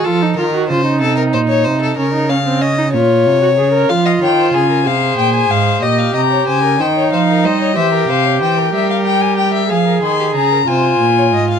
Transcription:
X:1
M:12/8
L:1/16
Q:3/8=62
K:Bbm
V:1 name="Violin"
z24 | z f =g2 a2 f2 g a f2 e2 b2 a2 g2 f2 e2 | =e2 f2 =g2 e f g a g e f2 c'2 b2 a6 |]
V:2 name="Violin"
=A2 B2 c2 A B c d c A B2 f2 e2 d6 | f e d c A B c6 e f e d c B c d c B c d | c B c d c B6- B A B A =G A B c3 d e f |]
V:3 name="Viola"
F E F G F E6- E D E D C D E F3 G A B | F6 A6 =G6 E6 | =G6 G6 A6 F6 |]
V:4 name="Cello" clef=bass
F,2 E,2 D,2 C,2 B,,2 C,2 D,6 B,,2 C,2 D,2 | F,2 E,2 D,2 C,2 B,,2 A,,2 B,,2 C,2 D,2 E,2 F,2 =G,2 | =E,2 C,2 E,2 =G,6 F,2 _E,2 D,2 C,2 B,,2 A,,2 |]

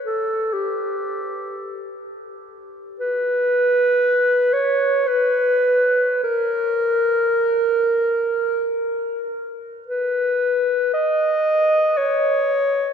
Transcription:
X:1
M:3/4
L:1/8
Q:1/4=58
K:B
V:1 name="Clarinet"
=A =G3 z2 | B3 c B2 | A4- A z | B2 d2 c2 |]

